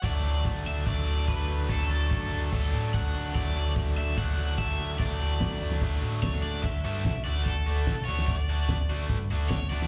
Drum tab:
CC |----------------|----------------|----------------|----------------|
HH |x-x-x-x-x-x-x-x-|x-x-x-x-x-x-x-x-|x-x-x-x-x-x-x-x-|x-x-x-x-x-x-x-x-|
SD |----------------|----------------|----------------|----o--o----o---|
BD |o---o---o---o---|o---o---o---o---|o---o---o---o---|o---o---o---o---|

CC |x---------------|----------------|
HH |--x---x---x---x-|--x---x---x---x-|
SD |----o-------o--o|----o-------o--o|
BD |o---o---o---o---|o---o---o---o---|